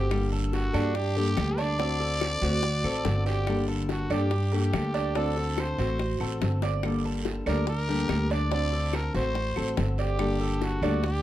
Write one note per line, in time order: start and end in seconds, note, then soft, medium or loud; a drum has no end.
0.00 0.68 G1 loud
0.00 0.10 A3 medium
0.00 0.10 C4 medium
0.00 0.11 G4 medium
0.00 0.30 G4 medium
0.11 0.73 D3 medium
0.11 0.73 G3 medium
0.11 0.73 A#3 medium
0.11 0.73 D4 medium
0.11 0.73 A4 medium
0.11 high bongo medium
0.11 long guiro medium
0.11 claves medium
0.32 0.73 A4 medium
0.53 0.97 F#4 medium
0.53 high bongo medium
0.53 short guiro medium
0.73 1.33 G2 loud
0.73 0.94 G3 medium
0.73 0.94 A#3 medium
0.73 0.94 D4 medium
0.73 1.15 D4 medium
0.73 0.94 A4 medium
0.73 short guiro medium
0.73 claves medium
0.95 1.61 G4 loud
0.95 muted nylon-string guitar stroke medium
0.95 high bongo medium
0.95 long guiro medium
1.16 1.37 G3 medium
1.16 1.37 A#3 medium
1.16 1.37 D4 medium
1.16 1.57 G4 medium
1.16 1.37 A4 medium
1.37 2.36 D2 medium
1.37 1.79 G3 medium
1.37 1.79 A#3 medium
1.37 1.79 D4 medium
1.37 1.79 A4 medium
1.37 high bongo medium
1.37 low bongo medium
1.37 short guiro medium
1.37 claves medium
1.58 1.78 D4 medium
1.58 3.26 D5 loud
1.58 short guiro medium
1.79 2.41 D3 medium
1.79 2.43 A3 medium
1.79 2.42 C4 medium
1.79 1.99 D4 medium
1.79 2.41 F#4 medium
1.79 high bongo medium
1.79 long guiro medium
2.00 2.41 A4 medium
2.00 high bongo soft
2.21 high bongo medium
2.21 short guiro medium
2.21 claves medium
2.42 2.81 D2 loud
2.42 2.63 A3 medium
2.42 2.63 C4 medium
2.42 2.83 F#4 medium
2.42 2.62 F#4 medium
2.42 short guiro medium
2.63 muted nylon-string guitar stroke medium
2.63 high bongo medium
2.63 long guiro medium
2.84 3.04 A1 medium
2.84 3.05 A3 medium
2.84 3.05 C4 medium
2.84 3.04 F#4 medium
2.84 3.25 A4 medium
2.84 high bongo soft
2.84 claves medium
3.05 4.04 G1 medium
3.05 3.46 D3 medium
3.05 3.47 A3 medium
3.05 3.47 C4 medium
3.05 3.47 F#4 medium
3.05 high bongo medium
3.05 low bongo medium
3.05 short guiro medium
3.26 3.66 G4 loud
3.26 3.67 D5 medium
3.26 high bongo soft
3.26 short guiro medium
3.47 4.10 D3 medium
3.47 4.10 G3 medium
3.47 4.10 A#3 medium
3.47 4.10 D4 medium
3.47 4.10 A4 medium
3.47 high bongo medium
3.47 long guiro medium
3.47 claves medium
3.68 4.09 A4 medium
3.89 4.14 F#4 medium
3.89 high bongo medium
3.89 short guiro medium
4.10 4.69 G2 medium
4.10 4.31 G3 medium
4.10 4.31 A#3 medium
4.10 4.51 D4 medium
4.10 4.31 D4 medium
4.10 4.53 G4 loud
4.10 4.31 A4 medium
4.10 short guiro medium
4.10 claves medium
4.31 muted nylon-string guitar stroke medium
4.31 high bongo medium
4.31 long guiro medium
4.52 4.72 G3 medium
4.52 4.73 A#3 medium
4.52 4.73 D4 medium
4.52 4.93 G4 medium
4.52 5.19 G4 medium
4.52 4.73 A4 medium
4.73 5.72 D2 medium
4.73 5.15 G3 medium
4.73 5.15 A#3 medium
4.73 5.15 D4 medium
4.73 5.15 A4 medium
4.73 high bongo medium
4.73 low bongo medium
4.73 short guiro medium
4.73 claves medium
4.94 5.14 D4 medium
4.94 short guiro medium
5.15 5.78 D3 medium
5.15 5.79 A3 medium
5.15 5.78 C4 medium
5.15 5.36 D4 medium
5.15 5.77 F#4 medium
5.15 5.61 A4 loud
5.15 high bongo medium
5.15 long guiro medium
5.36 5.77 A4 medium
5.36 high bongo soft
5.58 6.43 C5 medium
5.58 high bongo medium
5.58 short guiro medium
5.58 claves medium
5.78 6.17 A1 medium
5.78 5.99 A3 medium
5.78 5.99 C4 medium
5.78 6.19 F#4 medium
5.78 5.99 F#4 medium
5.78 short guiro medium
5.99 muted nylon-string guitar stroke medium
5.99 high bongo medium
5.99 long guiro medium
6.20 6.40 A1 medium
6.20 6.41 A3 medium
6.20 6.41 C4 medium
6.20 6.41 F#4 medium
6.20 6.61 A4 medium
6.20 high bongo soft
6.20 claves medium
6.41 7.40 G1 loud
6.41 6.83 D3 medium
6.41 6.83 A3 medium
6.41 6.83 C4 medium
6.41 6.83 F#4 medium
6.41 high bongo medium
6.41 low bongo medium
6.41 short guiro medium
6.62 7.03 D5 medium
6.62 high bongo medium
6.62 short guiro medium
6.83 7.46 D3 medium
6.83 7.46 G3 medium
6.83 7.46 A#3 medium
6.83 7.47 D4 medium
6.83 7.46 A4 medium
6.83 high bongo medium
6.83 long guiro medium
6.83 claves medium
7.05 7.46 A4 medium
7.25 high bongo medium
7.25 short guiro medium
7.46 8.05 D2 loud
7.46 7.67 G3 medium
7.46 7.67 A#3 medium
7.46 7.87 D4 medium
7.46 7.67 D4 medium
7.46 7.67 A4 medium
7.46 7.67 A#4 medium
7.46 short guiro medium
7.46 claves medium
7.67 8.33 A#4 loud
7.67 muted nylon-string guitar stroke medium
7.67 high bongo medium
7.67 long guiro medium
7.88 8.08 G3 medium
7.88 8.08 A#3 medium
7.88 8.09 D4 medium
7.88 8.29 G4 medium
7.88 8.09 A4 medium
8.09 9.08 D2 medium
8.09 8.50 G3 medium
8.09 8.51 A#3 medium
8.09 8.51 D4 medium
8.09 8.51 A4 medium
8.09 high bongo medium
8.09 low bongo medium
8.09 short guiro medium
8.09 claves medium
8.30 8.50 D4 medium
8.30 8.52 D5 loud
8.30 short guiro medium
8.51 9.14 D3 medium
8.51 9.15 A3 medium
8.51 9.14 C4 medium
8.51 8.72 D4 medium
8.51 9.13 F#4 medium
8.51 8.97 D5 loud
8.51 high bongo medium
8.51 long guiro medium
8.73 9.13 A4 medium
8.73 high bongo soft
8.93 9.15 A#4 medium
8.93 high bongo medium
8.93 short guiro medium
8.93 claves medium
9.14 9.54 A1 loud
9.14 9.34 A3 medium
9.14 9.34 C4 medium
9.14 9.34 F#4 medium
9.14 9.55 F#4 medium
9.14 9.74 C5 loud
9.14 short guiro medium
9.35 muted nylon-string guitar stroke medium
9.35 high bongo medium
9.35 long guiro medium
9.56 9.76 A1 medium
9.56 9.76 A3 medium
9.56 9.77 C4 medium
9.56 9.76 F#4 medium
9.56 9.97 A4 medium
9.56 high bongo soft
9.56 claves medium
9.77 10.77 G1 medium
9.77 10.18 D3 medium
9.77 10.19 A3 medium
9.77 10.19 C4 medium
9.77 10.19 F#4 medium
9.77 high bongo medium
9.77 low bongo medium
9.77 short guiro medium
9.98 10.66 G4 loud
9.98 10.39 D5 medium
9.98 high bongo soft
9.98 short guiro medium
10.19 10.81 D3 medium
10.19 10.82 G3 medium
10.19 10.82 A#3 medium
10.19 10.83 D4 medium
10.19 10.82 A4 medium
10.19 high bongo medium
10.19 long guiro medium
10.19 claves medium
10.41 10.81 A4 medium
10.61 11.05 F#4 medium
10.61 high bongo medium
10.61 short guiro medium
10.82 11.22 D2 loud
10.82 11.03 G3 medium
10.82 11.03 A#3 medium
10.82 11.22 D4 medium
10.82 11.03 D4 medium
10.82 11.03 A4 medium
10.82 short guiro medium
10.82 claves medium
11.03 11.22 G4 loud
11.03 muted nylon-string guitar stroke medium
11.03 high bongo medium
11.03 long guiro medium